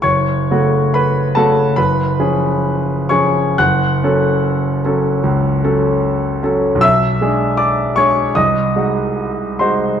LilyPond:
\new Staff \with { instrumentName = "Grand piano" } { \time 4/4 \key fis \minor \tempo 4 = 73 << { <cis'' cis'''>4 <b' b''>8 <a' a''>8 <b' b''>4. <cis'' cis'''>8 | <fis'' fis'''>2.~ <fis'' fis'''>8 r8 | <e'' e'''>4 <d'' d'''>8 <cis'' cis'''>8 <dis'' dis'''>4. <bis' bis''>8 | } \\ { fis,,8 <cis a fis'>4 <cis a fis'>8 fis,,8 <eis cis' gis'>4 <eis cis' gis'>8 | fis,,8 <fis cis' a'>4 <fis cis' a'>8 cis,8 <fis cis' a'>4 <fis cis' a'>8 | b,,8 <gis d' gis'>4 <gis d' gis'>8 bis,,8 <gis dis' fis'>4 <gis dis' fis'>8 | } >> }